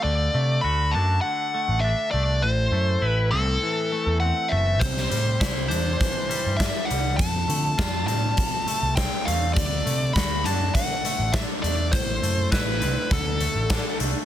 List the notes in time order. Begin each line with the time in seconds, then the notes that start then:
Already playing: A3
0.03 D2 D3 D5
0.34 C3 A3
0.61 D2 F#4 B5
0.91 F#2 D4 A5
1.21 D3 F#5
1.54 A3
1.69 A1
1.80 D4 E5
2.11 C2 A3 D5
2.42 A1 A2 C5
2.72 F#2 A3
3.02 A1 E4 B4
3.31 C2 C4 A4
3.63 E3
3.92 A3
4.07 E2
4.20 C4 F#5
4.48 A3 E5
4.52 F#1
4.79 C2 C3 C5, kick, closed hi-hat
4.97 snare
5.10 A2 G3, closed hi-hat
5.40 C2 E4, kick, snare, closed hi-hat
5.68 E2 D4 C5, closed hi-hat
6.00 E3, kick, closed hi-hat
6.29 G3, closed hi-hat
6.46 G2
6.57 D4 E5, kick, closed hi-hat
6.61 snare
6.85 G3 F#5
6.91 C2, closed hi-hat
7.17 F2 A5, kick, closed hi-hat
7.48 D3 A3, closed hi-hat
7.78 F2 F4, kick, snare, closed hi-hat
8.07 A2 C4 A5, closed hi-hat
8.37 kick, closed hi-hat
8.67 A3, closed hi-hat
8.83 C2
8.96 C4 G5, kick, snare, closed hi-hat
9.25 E2 A3 F5, closed hi-hat
9.53 D2 D3 D5, kick, closed hi-hat
9.85 C3 A3, closed hi-hat
10.14 D2 F#4 B5, kick, snare, closed hi-hat
10.44 F#2 D4 A5, closed hi-hat
10.75 D3 F#5, kick, closed hi-hat
11.05 A3, closed hi-hat
11.19 A1
11.33 D4 E5, kick, snare, closed hi-hat
11.63 E2 A3 D5, closed hi-hat
11.92 A1 A2 C5, kick, closed hi-hat
12.22 F#2 A3, closed hi-hat
12.52 A1 E4 B4, kick, snare, closed hi-hat
12.82 C2 C4, closed hi-hat
13.11 D2 D3 A4, kick, closed hi-hat
13.41 A3, closed hi-hat
13.55 A1
13.70 D4, kick, snare, closed hi-hat
14.00 C2 A3, closed hi-hat